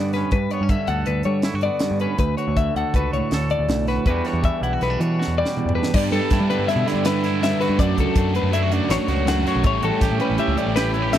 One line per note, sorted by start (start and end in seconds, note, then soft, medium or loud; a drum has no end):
0.00 0.23 G2 medium
0.00 0.30 G2 medium
0.00 0.29 D3 medium
0.00 0.31 B3 medium
0.00 0.37 F#4 soft
0.00 0.13 D5 medium
0.13 0.37 C#4 medium
0.13 0.31 B4 medium
0.13 snare soft
0.13 closed hi-hat soft
0.31 0.47 G2 medium
0.31 1.81 G2 medium
0.31 0.51 B4 medium
0.31 kick loud
0.31 closed hi-hat medium
0.51 0.63 B3 medium
0.51 0.70 C#5 medium
0.51 closed hi-hat soft
0.61 0.75 G2 medium
0.61 1.08 C#4 soft
0.69 1.25 D3 medium
0.69 0.88 E5 medium
0.69 kick medium
0.69 closed hi-hat medium
0.87 1.03 D2 medium
0.87 1.44 A4 medium
0.87 1.07 F#5 medium
0.87 closed hi-hat medium
1.06 1.22 D2 medium
1.06 1.25 B4 medium
1.06 closed hi-hat medium
1.23 2.17 D3 medium
1.23 1.48 G3 medium
1.23 1.63 C#5 medium
1.23 closed hi-hat medium
1.42 1.55 E4 medium
1.42 snare loud
1.42 closed hi-hat medium
1.54 1.68 G2 medium
1.54 2.20 F#4 medium
1.61 2.01 D5 medium
1.61 closed hi-hat medium
1.65 2.18 B3 medium
1.79 2.17 G2 medium
1.79 snare loud
1.79 closed hi-hat medium
1.91 2.06 G2 medium
2.00 2.18 C#4 medium
2.00 2.18 B4 medium
2.00 closed hi-hat medium
2.17 3.67 D2 medium
2.17 2.34 D2 medium
2.17 2.37 B4 medium
2.17 kick loud
2.17 closed hi-hat medium
2.37 2.96 F#4 medium
2.37 2.56 C#5 medium
2.37 closed hi-hat medium
2.48 2.69 D2 medium
2.57 4.07 D3 medium
2.57 2.76 E5 medium
2.57 kick loud
2.57 closed hi-hat medium
2.75 2.83 D2 medium
2.75 3.33 A4 soft
2.75 2.95 F#5 medium
2.75 closed hi-hat medium
2.94 3.09 C#2 medium
2.94 3.88 F#4 medium
2.94 3.13 B4 medium
2.94 kick medium
2.94 closed hi-hat medium
3.13 3.20 C#2 medium
3.13 4.07 A2 medium
3.13 3.50 C#5 medium
3.13 closed hi-hat medium
3.31 3.54 D2 medium
3.31 4.10 A4 medium
3.31 snare medium
3.31 closed hi-hat medium
3.50 3.88 D5 medium
3.50 closed hi-hat medium
3.59 3.66 D2 medium
3.68 3.97 B1 medium
3.68 4.06 D2 medium
3.68 snare loud
3.68 closed hi-hat medium
3.87 4.09 F#4 medium
3.87 4.06 B4 medium
3.87 snare soft
3.87 closed hi-hat medium
4.06 4.20 E2 medium
4.06 5.56 E2 medium
4.06 4.41 E3 medium
4.06 5.38 G3 medium
4.06 4.23 D4 medium
4.06 4.26 B4 loud
4.06 kick loud
4.06 closed hi-hat medium
4.10 4.63 F#4 medium
4.24 4.81 D4 medium
4.24 4.44 C#5 medium
4.24 snare soft
4.24 closed hi-hat soft
4.33 4.48 E2 medium
4.42 5.90 E3 medium
4.42 4.63 E5 medium
4.42 kick loud
4.42 closed hi-hat medium
4.61 4.76 B1 medium
4.61 4.73 E4 medium
4.61 4.81 F#5 medium
4.61 closed hi-hat medium
4.73 5.18 F#4 soft
4.81 4.96 B1 medium
4.81 4.90 B3 medium
4.81 5.01 B4 medium
4.81 snare soft
4.81 closed hi-hat medium
4.90 5.74 D4 soft
4.99 5.90 B2 medium
4.99 5.22 E3 medium
4.99 5.38 C#5 medium
4.99 closed hi-hat medium
5.19 5.91 F#4 medium
5.19 snare medium
5.27 5.42 E2 medium
5.38 7.80 G3 medium
5.38 5.75 D5 medium
5.46 snare medium
5.57 5.91 E2 medium
5.57 mid tom medium
5.66 5.80 E2 medium
5.66 floor tom medium
5.75 5.92 D4 medium
5.75 5.94 B4 medium
5.83 snare medium
5.94 6.08 G2 medium
5.94 7.41 G2 medium
5.94 6.31 G3 loud
5.94 6.30 B3 loud
5.94 6.14 D4 medium
5.94 6.12 G4 medium
5.94 6.10 B4 loud
5.94 6.12 D5 loud
5.94 kick loud
5.94 crash loud
6.12 6.19 G2 loud
6.12 6.31 D4 medium
6.12 6.32 G4 medium
6.12 6.49 A4 medium
6.12 6.69 A4 medium
6.12 6.33 B4 medium
6.12 closed hi-hat medium
6.30 6.38 G2 medium
6.30 6.50 B3 medium
6.30 6.51 D4 medium
6.30 6.69 E4 medium
6.30 6.49 G4 medium
6.30 6.49 B4 medium
6.30 kick loud
6.30 snare soft
6.30 closed hi-hat loud
6.40 6.47 G3 medium
6.50 6.85 D3 medium
6.50 6.88 G3 medium
6.50 6.67 B3 medium
6.50 6.69 D4 medium
6.50 6.69 G4 medium
6.50 6.68 B4 medium
6.50 6.70 B4 medium
6.50 closed hi-hat medium
6.58 6.65 G2 medium
6.68 6.88 B3 medium
6.68 6.88 D4 medium
6.68 7.06 E4 medium
6.68 6.87 G4 medium
6.68 6.85 B4 medium
6.68 6.88 E5 medium
6.68 snare soft
6.68 closed hi-hat medium
6.76 6.83 B2 medium
6.87 7.77 D3 medium
6.87 7.25 G3 medium
6.87 7.03 B3 medium
6.87 7.04 D4 medium
6.87 7.05 G4 medium
6.87 7.06 B4 medium
6.87 7.05 D5 medium
6.87 snare soft
6.87 closed hi-hat medium
6.95 7.53 G2 medium
7.05 7.40 B3 medium
7.05 7.24 D4 medium
7.05 7.24 E4 medium
7.05 7.23 G4 medium
7.05 7.43 B4 medium
7.05 7.22 B4 medium
7.05 snare loud
7.05 closed hi-hat medium
7.23 7.40 D4 medium
7.23 7.61 E4 medium
7.23 7.41 G4 medium
7.23 7.41 B4 medium
7.23 snare soft
7.23 closed hi-hat medium
7.40 7.77 G2 medium
7.40 7.77 G3 medium
7.40 7.77 B3 loud
7.40 7.60 D4 medium
7.40 7.59 G4 medium
7.40 7.58 B4 medium
7.40 7.61 E5 medium
7.40 snare loud
7.40 closed hi-hat medium
7.59 7.78 D4 medium
7.59 7.77 F#4 medium
7.59 7.78 G4 medium
7.59 7.77 B4 medium
7.59 7.79 B4 medium
7.59 snare soft
7.59 closed hi-hat medium
7.69 7.77 G2 medium
7.78 8.71 F#2 medium
7.78 7.93 F#2 medium
7.78 8.14 F#3 medium
7.78 7.99 A3 loud
7.78 7.98 D4 loud
7.78 7.96 F#4 loud
7.78 7.98 D5 loud
7.78 kick loud
7.78 closed hi-hat loud
7.97 8.05 C#2 loud
7.97 8.16 A3 medium
7.97 8.16 D4 medium
7.97 8.17 F#4 medium
7.97 8.36 A4 medium
7.97 kick medium
7.97 closed hi-hat medium
8.15 8.37 F#2 medium
8.15 8.34 F#3 medium
8.15 8.35 A3 medium
8.15 8.33 D4 medium
8.15 8.32 F#4 medium
8.15 kick loud
8.15 closed hi-hat loud
8.33 8.50 F#3 medium
8.33 8.53 A3 medium
8.33 8.53 D4 medium
8.33 8.53 F#4 medium
8.33 8.54 B4 medium
8.33 closed hi-hat medium
8.43 8.79 F#2 medium
8.52 8.72 F#3 medium
8.52 8.72 A3 medium
8.52 8.71 D4 medium
8.52 8.63 E4 medium
8.52 8.70 F#4 medium
8.52 8.73 E5 medium
8.52 closed hi-hat loud
8.63 9.08 F#4 medium
8.71 9.28 F#2 medium
8.71 8.88 F#3 medium
8.71 8.89 A3 medium
8.71 8.89 D4 medium
8.71 8.90 F#4 medium
8.71 8.91 D5 medium
8.71 closed hi-hat medium
8.89 8.97 A1 medium
8.89 9.25 F#3 medium
8.89 9.10 A3 medium
8.89 9.08 D4 medium
8.89 9.07 F#4 medium
8.89 9.28 C#5 medium
8.89 snare loud
8.89 closed hi-hat loud
9.08 9.44 C#2 loud
9.08 9.27 A3 medium
9.08 9.27 D4 medium
9.08 9.28 F#4 medium
9.08 9.46 F#4 medium
9.08 snare soft
9.08 closed hi-hat medium
9.26 9.63 F#2 medium
9.26 9.63 F#3 medium
9.26 9.47 A3 loud
9.26 9.45 D4 medium
9.26 9.43 F#4 medium
9.26 9.46 F#5 medium
9.26 snare loud
9.26 closed hi-hat loud
9.44 9.65 A3 medium
9.44 9.64 D4 medium
9.44 9.62 F#4 medium
9.44 9.63 F#4 medium
9.44 9.65 C#5 medium
9.44 snare soft
9.44 closed hi-hat medium
9.56 9.63 B1 medium
9.64 9.79 A1 medium
9.64 10.57 A2 medium
9.64 10.02 A2 loud
9.64 9.99 E3 medium
9.64 9.85 G3 loud
9.64 9.84 C#4 loud
9.64 9.82 G4 loud
9.64 9.84 C#5 loud
9.64 kick loud
9.64 closed hi-hat loud
9.83 9.90 A1 loud
9.83 10.01 G3 medium
9.83 10.03 C#4 medium
9.83 10.01 F#4 medium
9.83 10.02 G4 medium
9.83 10.21 A4 medium
9.83 closed hi-hat medium
10.00 10.09 A1 medium
10.00 10.22 E3 medium
10.00 10.21 G3 medium
10.00 10.21 C#4 medium
10.00 10.37 G4 medium
10.00 10.20 G4 medium
10.00 kick loud
10.00 snare soft
10.00 closed hi-hat loud
10.11 10.18 A2 medium
10.18 11.18 C#4 medium
10.18 10.40 C#4 medium
10.18 10.39 G4 medium
10.18 10.39 B4 medium
10.18 closed hi-hat medium
10.22 10.59 A2 medium
10.22 10.37 E3 medium
10.22 10.37 G3 medium
10.30 10.37 A1 medium
10.38 10.58 E3 medium
10.38 10.58 G3 medium
10.38 10.57 C#4 medium
10.38 10.75 G4 medium
10.38 10.56 G4 medium
10.38 10.58 E5 medium
10.38 closed hi-hat medium
10.48 10.55 C#2 loud
10.57 11.10 A2 medium
10.57 10.96 A2 medium
10.57 10.76 E3 medium
10.57 10.76 G3 medium
10.57 10.77 C#4 medium
10.57 10.78 G4 medium
10.57 10.76 D5 medium
10.57 closed hi-hat medium
10.67 11.18 A1 medium
10.76 11.13 E3 medium
10.76 10.97 G3 medium
10.76 10.96 C#4 medium
10.76 10.94 G4 medium
10.76 11.13 B4 medium
10.76 snare loud
10.76 closed hi-hat medium
10.94 11.15 C#4 medium
10.94 11.02 E4 medium
10.94 11.15 G4 medium
10.94 closed hi-hat medium
10.98 11.14 G3 medium
10.98 11.18 G4 soft
11.11 11.18 A2 medium
11.11 11.18 E5 medium
11.11 snare loud
11.11 closed hi-hat loud